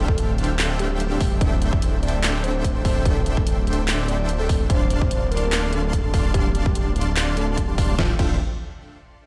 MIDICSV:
0, 0, Header, 1, 5, 480
1, 0, Start_track
1, 0, Key_signature, -1, "minor"
1, 0, Tempo, 410959
1, 1648, Time_signature, 4, 2, 24, 8
1, 10820, End_track
2, 0, Start_track
2, 0, Title_t, "Supersaw synth"
2, 0, Program_c, 0, 81
2, 0, Note_on_c, 0, 62, 94
2, 0, Note_on_c, 0, 69, 82
2, 0, Note_on_c, 0, 72, 82
2, 0, Note_on_c, 0, 76, 84
2, 0, Note_on_c, 0, 77, 86
2, 0, Note_on_c, 0, 79, 98
2, 906, Note_off_c, 0, 62, 0
2, 906, Note_off_c, 0, 69, 0
2, 906, Note_off_c, 0, 72, 0
2, 906, Note_off_c, 0, 76, 0
2, 906, Note_off_c, 0, 77, 0
2, 906, Note_off_c, 0, 79, 0
2, 928, Note_on_c, 0, 62, 84
2, 928, Note_on_c, 0, 69, 79
2, 928, Note_on_c, 0, 72, 78
2, 928, Note_on_c, 0, 76, 78
2, 928, Note_on_c, 0, 77, 80
2, 928, Note_on_c, 0, 79, 96
2, 1381, Note_off_c, 0, 62, 0
2, 1381, Note_off_c, 0, 69, 0
2, 1381, Note_off_c, 0, 72, 0
2, 1381, Note_off_c, 0, 76, 0
2, 1381, Note_off_c, 0, 77, 0
2, 1381, Note_off_c, 0, 79, 0
2, 1407, Note_on_c, 0, 69, 79
2, 1407, Note_on_c, 0, 79, 94
2, 1408, Note_on_c, 0, 62, 89
2, 1408, Note_on_c, 0, 72, 77
2, 1408, Note_on_c, 0, 76, 80
2, 1621, Note_off_c, 0, 62, 0
2, 1621, Note_off_c, 0, 69, 0
2, 1621, Note_off_c, 0, 72, 0
2, 1621, Note_off_c, 0, 79, 0
2, 1622, Note_off_c, 0, 76, 0
2, 1648, Note_on_c, 0, 79, 99
2, 1649, Note_on_c, 0, 62, 88
2, 1649, Note_on_c, 0, 69, 85
2, 1649, Note_on_c, 0, 72, 84
2, 1649, Note_on_c, 0, 76, 82
2, 2826, Note_off_c, 0, 62, 0
2, 2826, Note_off_c, 0, 69, 0
2, 2826, Note_off_c, 0, 72, 0
2, 2826, Note_off_c, 0, 76, 0
2, 2826, Note_off_c, 0, 79, 0
2, 2848, Note_on_c, 0, 62, 85
2, 2848, Note_on_c, 0, 79, 98
2, 2849, Note_on_c, 0, 69, 80
2, 2849, Note_on_c, 0, 72, 81
2, 2849, Note_on_c, 0, 76, 79
2, 3301, Note_off_c, 0, 62, 0
2, 3301, Note_off_c, 0, 79, 0
2, 3302, Note_off_c, 0, 69, 0
2, 3302, Note_off_c, 0, 72, 0
2, 3302, Note_off_c, 0, 76, 0
2, 3327, Note_on_c, 0, 72, 76
2, 3327, Note_on_c, 0, 76, 81
2, 3328, Note_on_c, 0, 69, 79
2, 3328, Note_on_c, 0, 79, 97
2, 3329, Note_on_c, 0, 62, 88
2, 3541, Note_off_c, 0, 69, 0
2, 3541, Note_off_c, 0, 72, 0
2, 3541, Note_off_c, 0, 76, 0
2, 3541, Note_off_c, 0, 79, 0
2, 3542, Note_off_c, 0, 62, 0
2, 3566, Note_on_c, 0, 62, 94
2, 3566, Note_on_c, 0, 69, 84
2, 3566, Note_on_c, 0, 72, 85
2, 3566, Note_on_c, 0, 76, 80
2, 3566, Note_on_c, 0, 79, 99
2, 4745, Note_off_c, 0, 62, 0
2, 4745, Note_off_c, 0, 69, 0
2, 4745, Note_off_c, 0, 72, 0
2, 4745, Note_off_c, 0, 76, 0
2, 4745, Note_off_c, 0, 79, 0
2, 4766, Note_on_c, 0, 79, 96
2, 4767, Note_on_c, 0, 62, 89
2, 4767, Note_on_c, 0, 69, 79
2, 4767, Note_on_c, 0, 72, 81
2, 4767, Note_on_c, 0, 76, 79
2, 5221, Note_off_c, 0, 62, 0
2, 5221, Note_off_c, 0, 69, 0
2, 5221, Note_off_c, 0, 72, 0
2, 5221, Note_off_c, 0, 76, 0
2, 5221, Note_off_c, 0, 79, 0
2, 5249, Note_on_c, 0, 62, 85
2, 5250, Note_on_c, 0, 69, 78
2, 5250, Note_on_c, 0, 72, 80
2, 5250, Note_on_c, 0, 76, 81
2, 5250, Note_on_c, 0, 79, 95
2, 5462, Note_off_c, 0, 62, 0
2, 5462, Note_off_c, 0, 69, 0
2, 5462, Note_off_c, 0, 72, 0
2, 5462, Note_off_c, 0, 76, 0
2, 5463, Note_off_c, 0, 79, 0
2, 5489, Note_on_c, 0, 62, 88
2, 5489, Note_on_c, 0, 74, 84
2, 5489, Note_on_c, 0, 77, 84
2, 5489, Note_on_c, 0, 81, 81
2, 5490, Note_on_c, 0, 84, 99
2, 6666, Note_off_c, 0, 62, 0
2, 6666, Note_off_c, 0, 74, 0
2, 6666, Note_off_c, 0, 77, 0
2, 6666, Note_off_c, 0, 81, 0
2, 6667, Note_off_c, 0, 84, 0
2, 6689, Note_on_c, 0, 62, 85
2, 6689, Note_on_c, 0, 74, 82
2, 6689, Note_on_c, 0, 77, 78
2, 6689, Note_on_c, 0, 81, 82
2, 6690, Note_on_c, 0, 84, 93
2, 7142, Note_off_c, 0, 62, 0
2, 7142, Note_off_c, 0, 74, 0
2, 7142, Note_off_c, 0, 77, 0
2, 7142, Note_off_c, 0, 81, 0
2, 7142, Note_off_c, 0, 84, 0
2, 7170, Note_on_c, 0, 62, 86
2, 7170, Note_on_c, 0, 74, 78
2, 7170, Note_on_c, 0, 77, 81
2, 7170, Note_on_c, 0, 81, 82
2, 7170, Note_on_c, 0, 84, 94
2, 7382, Note_off_c, 0, 74, 0
2, 7382, Note_off_c, 0, 81, 0
2, 7382, Note_off_c, 0, 84, 0
2, 7383, Note_off_c, 0, 62, 0
2, 7383, Note_off_c, 0, 77, 0
2, 7409, Note_on_c, 0, 62, 92
2, 7409, Note_on_c, 0, 77, 81
2, 7409, Note_on_c, 0, 84, 100
2, 7410, Note_on_c, 0, 74, 81
2, 7410, Note_on_c, 0, 81, 83
2, 8586, Note_off_c, 0, 62, 0
2, 8586, Note_off_c, 0, 84, 0
2, 8587, Note_off_c, 0, 74, 0
2, 8587, Note_off_c, 0, 77, 0
2, 8587, Note_off_c, 0, 81, 0
2, 8606, Note_on_c, 0, 77, 82
2, 8606, Note_on_c, 0, 84, 92
2, 8607, Note_on_c, 0, 62, 87
2, 8607, Note_on_c, 0, 74, 83
2, 8607, Note_on_c, 0, 81, 80
2, 9060, Note_off_c, 0, 77, 0
2, 9061, Note_off_c, 0, 62, 0
2, 9061, Note_off_c, 0, 74, 0
2, 9061, Note_off_c, 0, 81, 0
2, 9061, Note_off_c, 0, 84, 0
2, 9086, Note_on_c, 0, 62, 85
2, 9086, Note_on_c, 0, 74, 78
2, 9086, Note_on_c, 0, 77, 80
2, 9086, Note_on_c, 0, 81, 79
2, 9086, Note_on_c, 0, 84, 97
2, 9300, Note_off_c, 0, 62, 0
2, 9300, Note_off_c, 0, 74, 0
2, 9300, Note_off_c, 0, 84, 0
2, 9301, Note_off_c, 0, 77, 0
2, 9301, Note_off_c, 0, 81, 0
2, 9327, Note_on_c, 0, 69, 79
2, 9327, Note_on_c, 0, 72, 79
2, 9327, Note_on_c, 0, 76, 79
2, 9327, Note_on_c, 0, 77, 83
2, 9328, Note_on_c, 0, 62, 89
2, 9328, Note_on_c, 0, 79, 100
2, 9469, Note_off_c, 0, 62, 0
2, 9469, Note_off_c, 0, 69, 0
2, 9469, Note_off_c, 0, 72, 0
2, 9469, Note_off_c, 0, 76, 0
2, 9469, Note_off_c, 0, 77, 0
2, 9469, Note_off_c, 0, 79, 0
2, 9567, Note_on_c, 0, 62, 84
2, 9567, Note_on_c, 0, 72, 75
2, 9567, Note_on_c, 0, 76, 80
2, 9567, Note_on_c, 0, 79, 94
2, 9568, Note_on_c, 0, 69, 79
2, 9568, Note_on_c, 0, 77, 77
2, 9750, Note_off_c, 0, 62, 0
2, 9750, Note_off_c, 0, 69, 0
2, 9750, Note_off_c, 0, 72, 0
2, 9750, Note_off_c, 0, 76, 0
2, 9750, Note_off_c, 0, 77, 0
2, 9750, Note_off_c, 0, 79, 0
2, 10820, End_track
3, 0, Start_track
3, 0, Title_t, "Soft synth lead"
3, 0, Program_c, 1, 80
3, 97, Note_on_c, 1, 69, 101
3, 383, Note_off_c, 1, 69, 0
3, 929, Note_on_c, 1, 67, 100
3, 1222, Note_off_c, 1, 67, 0
3, 1295, Note_on_c, 1, 67, 101
3, 1647, Note_on_c, 1, 76, 103
3, 1665, Note_off_c, 1, 67, 0
3, 1941, Note_off_c, 1, 76, 0
3, 2017, Note_on_c, 1, 76, 100
3, 2303, Note_off_c, 1, 76, 0
3, 2366, Note_on_c, 1, 74, 99
3, 2761, Note_off_c, 1, 74, 0
3, 2846, Note_on_c, 1, 72, 99
3, 3140, Note_off_c, 1, 72, 0
3, 3216, Note_on_c, 1, 72, 103
3, 3567, Note_on_c, 1, 69, 99
3, 3584, Note_off_c, 1, 72, 0
3, 3861, Note_off_c, 1, 69, 0
3, 3935, Note_on_c, 1, 69, 99
3, 4222, Note_off_c, 1, 69, 0
3, 4766, Note_on_c, 1, 74, 96
3, 5060, Note_off_c, 1, 74, 0
3, 5135, Note_on_c, 1, 69, 98
3, 5422, Note_off_c, 1, 69, 0
3, 5487, Note_on_c, 1, 72, 107
3, 5781, Note_off_c, 1, 72, 0
3, 5856, Note_on_c, 1, 72, 100
3, 6142, Note_off_c, 1, 72, 0
3, 6207, Note_on_c, 1, 70, 98
3, 6601, Note_off_c, 1, 70, 0
3, 6687, Note_on_c, 1, 69, 101
3, 6981, Note_off_c, 1, 69, 0
3, 7059, Note_on_c, 1, 69, 96
3, 7344, Note_off_c, 1, 69, 0
3, 7408, Note_on_c, 1, 67, 97
3, 7701, Note_off_c, 1, 67, 0
3, 7779, Note_on_c, 1, 67, 103
3, 8064, Note_off_c, 1, 67, 0
3, 8609, Note_on_c, 1, 69, 101
3, 8902, Note_off_c, 1, 69, 0
3, 8978, Note_on_c, 1, 67, 103
3, 9263, Note_off_c, 1, 67, 0
3, 9331, Note_on_c, 1, 65, 95
3, 9471, Note_off_c, 1, 65, 0
3, 9568, Note_on_c, 1, 65, 97
3, 9750, Note_off_c, 1, 65, 0
3, 10820, End_track
4, 0, Start_track
4, 0, Title_t, "Detuned saw bass"
4, 0, Program_c, 2, 39
4, 0, Note_on_c, 2, 26, 93
4, 1386, Note_off_c, 2, 26, 0
4, 1408, Note_on_c, 2, 26, 90
4, 5466, Note_off_c, 2, 26, 0
4, 5488, Note_on_c, 2, 26, 91
4, 9306, Note_off_c, 2, 26, 0
4, 9328, Note_on_c, 2, 26, 101
4, 9469, Note_off_c, 2, 26, 0
4, 9568, Note_on_c, 2, 26, 101
4, 9791, Note_off_c, 2, 26, 0
4, 10820, End_track
5, 0, Start_track
5, 0, Title_t, "Drums"
5, 98, Note_on_c, 9, 36, 116
5, 208, Note_on_c, 9, 42, 76
5, 215, Note_off_c, 9, 36, 0
5, 325, Note_off_c, 9, 42, 0
5, 448, Note_on_c, 9, 42, 50
5, 513, Note_off_c, 9, 42, 0
5, 513, Note_on_c, 9, 42, 64
5, 630, Note_off_c, 9, 42, 0
5, 688, Note_on_c, 9, 39, 126
5, 688, Note_on_c, 9, 42, 78
5, 805, Note_off_c, 9, 39, 0
5, 805, Note_off_c, 9, 42, 0
5, 927, Note_on_c, 9, 42, 67
5, 1044, Note_off_c, 9, 42, 0
5, 1168, Note_on_c, 9, 42, 77
5, 1285, Note_off_c, 9, 42, 0
5, 1408, Note_on_c, 9, 36, 114
5, 1408, Note_on_c, 9, 46, 88
5, 1525, Note_off_c, 9, 36, 0
5, 1525, Note_off_c, 9, 46, 0
5, 1648, Note_on_c, 9, 36, 126
5, 1649, Note_on_c, 9, 42, 76
5, 1765, Note_off_c, 9, 36, 0
5, 1765, Note_off_c, 9, 42, 0
5, 1888, Note_on_c, 9, 42, 67
5, 2005, Note_off_c, 9, 42, 0
5, 2018, Note_on_c, 9, 36, 112
5, 2128, Note_on_c, 9, 42, 80
5, 2135, Note_off_c, 9, 36, 0
5, 2245, Note_off_c, 9, 42, 0
5, 2369, Note_on_c, 9, 42, 49
5, 2435, Note_off_c, 9, 42, 0
5, 2435, Note_on_c, 9, 42, 65
5, 2551, Note_off_c, 9, 42, 0
5, 2609, Note_on_c, 9, 39, 121
5, 2609, Note_on_c, 9, 42, 81
5, 2726, Note_off_c, 9, 39, 0
5, 2726, Note_off_c, 9, 42, 0
5, 2849, Note_on_c, 9, 42, 65
5, 2966, Note_off_c, 9, 42, 0
5, 3088, Note_on_c, 9, 36, 63
5, 3090, Note_on_c, 9, 42, 76
5, 3205, Note_off_c, 9, 36, 0
5, 3207, Note_off_c, 9, 42, 0
5, 3328, Note_on_c, 9, 36, 113
5, 3329, Note_on_c, 9, 46, 95
5, 3445, Note_off_c, 9, 36, 0
5, 3446, Note_off_c, 9, 46, 0
5, 3568, Note_on_c, 9, 36, 122
5, 3569, Note_on_c, 9, 42, 79
5, 3685, Note_off_c, 9, 36, 0
5, 3686, Note_off_c, 9, 42, 0
5, 3809, Note_on_c, 9, 42, 68
5, 3926, Note_off_c, 9, 42, 0
5, 3938, Note_on_c, 9, 36, 103
5, 4049, Note_on_c, 9, 42, 79
5, 4055, Note_off_c, 9, 36, 0
5, 4166, Note_off_c, 9, 42, 0
5, 4289, Note_on_c, 9, 42, 52
5, 4354, Note_off_c, 9, 42, 0
5, 4354, Note_on_c, 9, 42, 70
5, 4471, Note_off_c, 9, 42, 0
5, 4530, Note_on_c, 9, 39, 115
5, 4530, Note_on_c, 9, 42, 79
5, 4647, Note_off_c, 9, 39, 0
5, 4647, Note_off_c, 9, 42, 0
5, 4770, Note_on_c, 9, 42, 68
5, 4887, Note_off_c, 9, 42, 0
5, 5009, Note_on_c, 9, 42, 78
5, 5126, Note_off_c, 9, 42, 0
5, 5248, Note_on_c, 9, 36, 105
5, 5249, Note_on_c, 9, 46, 96
5, 5365, Note_off_c, 9, 36, 0
5, 5366, Note_off_c, 9, 46, 0
5, 5488, Note_on_c, 9, 36, 121
5, 5489, Note_on_c, 9, 42, 86
5, 5605, Note_off_c, 9, 36, 0
5, 5605, Note_off_c, 9, 42, 0
5, 5728, Note_on_c, 9, 42, 72
5, 5845, Note_off_c, 9, 42, 0
5, 5858, Note_on_c, 9, 36, 99
5, 5969, Note_on_c, 9, 42, 81
5, 5975, Note_off_c, 9, 36, 0
5, 6086, Note_off_c, 9, 42, 0
5, 6210, Note_on_c, 9, 42, 55
5, 6274, Note_off_c, 9, 42, 0
5, 6274, Note_on_c, 9, 42, 71
5, 6391, Note_off_c, 9, 42, 0
5, 6449, Note_on_c, 9, 39, 120
5, 6449, Note_on_c, 9, 42, 85
5, 6566, Note_off_c, 9, 39, 0
5, 6566, Note_off_c, 9, 42, 0
5, 6689, Note_on_c, 9, 42, 67
5, 6805, Note_off_c, 9, 42, 0
5, 6928, Note_on_c, 9, 36, 61
5, 6929, Note_on_c, 9, 42, 83
5, 7045, Note_off_c, 9, 36, 0
5, 7046, Note_off_c, 9, 42, 0
5, 7168, Note_on_c, 9, 36, 104
5, 7169, Note_on_c, 9, 46, 100
5, 7285, Note_off_c, 9, 36, 0
5, 7285, Note_off_c, 9, 46, 0
5, 7408, Note_on_c, 9, 36, 117
5, 7408, Note_on_c, 9, 42, 83
5, 7525, Note_off_c, 9, 36, 0
5, 7525, Note_off_c, 9, 42, 0
5, 7649, Note_on_c, 9, 42, 75
5, 7765, Note_off_c, 9, 42, 0
5, 7778, Note_on_c, 9, 36, 105
5, 7888, Note_on_c, 9, 42, 85
5, 7895, Note_off_c, 9, 36, 0
5, 8005, Note_off_c, 9, 42, 0
5, 8128, Note_on_c, 9, 42, 55
5, 8193, Note_off_c, 9, 42, 0
5, 8193, Note_on_c, 9, 42, 72
5, 8309, Note_off_c, 9, 42, 0
5, 8368, Note_on_c, 9, 39, 118
5, 8368, Note_on_c, 9, 42, 88
5, 8484, Note_off_c, 9, 39, 0
5, 8484, Note_off_c, 9, 42, 0
5, 8607, Note_on_c, 9, 42, 71
5, 8724, Note_off_c, 9, 42, 0
5, 8848, Note_on_c, 9, 36, 59
5, 8848, Note_on_c, 9, 42, 85
5, 8965, Note_off_c, 9, 36, 0
5, 8965, Note_off_c, 9, 42, 0
5, 9088, Note_on_c, 9, 36, 105
5, 9089, Note_on_c, 9, 46, 94
5, 9205, Note_off_c, 9, 36, 0
5, 9205, Note_off_c, 9, 46, 0
5, 9328, Note_on_c, 9, 36, 119
5, 9328, Note_on_c, 9, 38, 87
5, 9444, Note_off_c, 9, 36, 0
5, 9445, Note_off_c, 9, 38, 0
5, 9567, Note_on_c, 9, 36, 117
5, 9568, Note_on_c, 9, 49, 92
5, 9684, Note_off_c, 9, 36, 0
5, 9684, Note_off_c, 9, 49, 0
5, 10820, End_track
0, 0, End_of_file